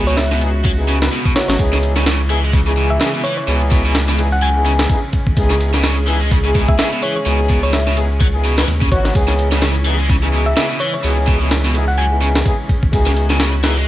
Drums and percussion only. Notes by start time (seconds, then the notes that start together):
0.17 snare, ride
0.31 snare
0.41 ride
0.65 kick, ride
0.88 ride
1.02 snare
1.12 open hi-hat
1.25 kick
1.36 snare, ride
1.50 snare, ride
1.59 kick, ride
1.73 snare
1.83 ride
1.96 snare
2.06 snare, ride
2.30 ride
2.53 kick, ride
3.01 snare, ride
3.24 ride
3.48 ride
3.71 kick, ride
3.95 snare, ride
4.08 snare
4.19 ride
4.66 ride
4.79 snare
4.89 kick, ride
5.13 kick, ride
5.27 kick
5.37 kick, ride
5.50 snare
5.60 ride
5.74 snare
5.84 snare, ride
6.08 ride
6.31 kick, ride
6.55 kick, ride
6.69 kick
6.79 snare, ride
7.02 ride
7.26 ride
7.50 kick, ride
7.73 snare, ride
7.87 snare
7.97 ride
8.20 kick, ride
8.45 ride
8.58 snare
8.68 open hi-hat
8.81 kick
8.92 kick, ride
9.05 snare
9.15 kick, ride
9.28 snare
9.39 ride
9.52 snare
9.62 snare, ride
9.86 ride
10.09 kick, ride
10.57 snare, ride
10.80 ride
11.04 ride
11.27 kick, ride
11.51 snare, ride
11.65 snare
11.75 ride
12.22 ride
12.36 snare
12.46 kick, ride
12.69 kick, ride
12.83 kick
12.93 kick, ride
13.07 snare
13.16 ride
13.30 snare
13.40 snare, ride
13.64 snare
13.77 open hi-hat